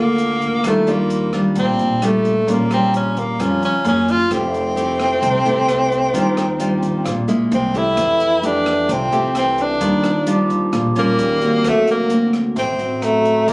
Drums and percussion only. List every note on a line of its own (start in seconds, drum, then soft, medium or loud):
0.18 closed hi-hat soft
0.41 kick medium
0.41 closed hi-hat soft
0.64 kick medium
0.64 cross-stick medium
0.64 closed hi-hat soft
0.87 closed hi-hat soft
1.10 closed hi-hat soft
1.33 cross-stick medium
1.33 closed hi-hat soft
1.55 kick medium
1.55 closed hi-hat soft
1.79 closed hi-hat soft
2.02 cross-stick medium
2.02 closed hi-hat soft
2.25 closed hi-hat soft
2.48 kick medium
2.48 closed hi-hat medium
2.71 cross-stick medium
2.71 closed hi-hat soft
2.94 closed hi-hat soft
3.17 kick medium
3.17 closed hi-hat soft
3.40 kick medium
3.40 cross-stick medium
3.40 closed hi-hat soft
3.63 closed hi-hat soft
3.85 closed hi-hat soft
4.08 kick soft
4.08 closed hi-hat soft
4.31 kick medium
4.31 cross-stick medium
4.31 closed hi-hat soft
4.54 closed hi-hat soft
4.77 closed hi-hat soft
5.00 cross-stick medium
5.00 closed hi-hat soft
5.22 kick medium
5.22 closed hi-hat soft
5.46 closed hi-hat soft
5.69 cross-stick medium
5.69 closed hi-hat soft
5.92 closed hi-hat soft
6.14 kick medium
6.14 closed hi-hat soft
6.37 cross-stick medium
6.37 closed hi-hat soft
6.60 closed hi-hat soft
6.83 kick medium
6.83 closed hi-hat soft
7.06 kick medium
7.06 cross-stick medium
7.06 closed hi-hat soft
7.29 closed hi-hat soft
7.52 closed hi-hat soft
7.74 kick medium
7.74 closed hi-hat soft
7.97 kick medium
7.97 cross-stick medium
7.97 closed hi-hat soft
8.20 closed hi-hat soft
8.43 closed hi-hat soft
8.66 cross-stick medium
8.66 closed hi-hat soft
8.89 kick medium
8.89 closed hi-hat soft
9.12 closed hi-hat soft
9.35 cross-stick medium
9.35 closed hi-hat soft
9.58 closed hi-hat soft
9.81 kick medium
9.81 closed hi-hat soft
10.04 cross-stick medium
10.04 closed hi-hat soft
10.27 closed hi-hat soft
10.50 kick medium
10.50 closed hi-hat soft
10.73 kick medium
10.73 cross-stick medium
10.73 closed hi-hat soft
10.96 closed hi-hat soft
11.19 closed hi-hat soft
11.41 kick soft
11.41 closed hi-hat soft
11.64 kick medium
11.64 cross-stick medium
11.64 closed hi-hat medium
11.87 closed hi-hat soft
12.10 closed hi-hat soft
12.33 cross-stick medium
12.33 closed hi-hat soft
12.56 kick medium
12.56 closed hi-hat soft
12.79 closed hi-hat soft
13.02 cross-stick medium
13.02 closed hi-hat soft
13.25 closed hi-hat soft
13.48 kick medium
13.48 closed hi-hat soft